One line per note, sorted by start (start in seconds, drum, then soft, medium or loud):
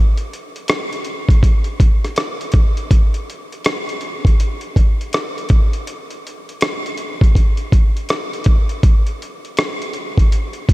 0.17 closed hi-hat medium
0.33 closed hi-hat medium
0.56 closed hi-hat soft
0.68 cross-stick loud
0.68 closed hi-hat medium
0.93 closed hi-hat soft
1.05 closed hi-hat medium
1.29 kick medium
1.29 closed hi-hat soft
1.43 kick medium
1.43 closed hi-hat medium
1.64 closed hi-hat soft
1.80 kick medium
1.80 closed hi-hat medium
2.04 cross-stick soft
2.04 closed hi-hat soft
2.16 cross-stick loud
2.16 closed hi-hat medium
2.41 closed hi-hat medium
2.52 kick medium
2.52 closed hi-hat medium
2.77 closed hi-hat soft
2.91 kick loud
2.91 closed hi-hat medium
3.14 closed hi-hat medium
3.30 closed hi-hat medium
3.52 closed hi-hat soft
3.64 cross-stick loud
3.64 closed hi-hat medium
3.89 closed hi-hat soft
4.01 closed hi-hat medium
4.25 kick medium
4.25 closed hi-hat medium
4.40 closed hi-hat medium
4.61 closed hi-hat soft
4.76 kick medium
4.76 closed hi-hat medium
5.01 closed hi-hat soft
5.13 cross-stick loud
5.13 closed hi-hat medium
5.38 closed hi-hat soft
5.49 kick loud
5.49 closed hi-hat medium
5.73 closed hi-hat soft
5.87 closed hi-hat medium
6.11 closed hi-hat soft
6.27 closed hi-hat medium
6.49 closed hi-hat soft
6.61 cross-stick loud
6.61 closed hi-hat medium
6.86 closed hi-hat soft
6.98 closed hi-hat medium
7.21 kick medium
7.21 closed hi-hat soft
7.35 kick medium
7.35 closed hi-hat medium
7.57 closed hi-hat soft
7.72 kick medium
7.72 closed hi-hat medium
7.97 closed hi-hat soft
8.09 cross-stick loud
8.09 closed hi-hat medium
8.33 closed hi-hat soft
8.44 kick medium
8.44 closed hi-hat medium
8.69 closed hi-hat soft
8.83 kick loud
8.83 closed hi-hat medium
9.07 closed hi-hat soft
9.22 closed hi-hat medium
9.45 closed hi-hat soft
9.57 cross-stick loud
9.57 closed hi-hat medium
9.82 closed hi-hat soft
9.93 closed hi-hat medium
10.18 kick medium
10.18 closed hi-hat soft
10.32 closed hi-hat medium
10.53 closed hi-hat soft
10.69 kick medium
10.69 closed hi-hat medium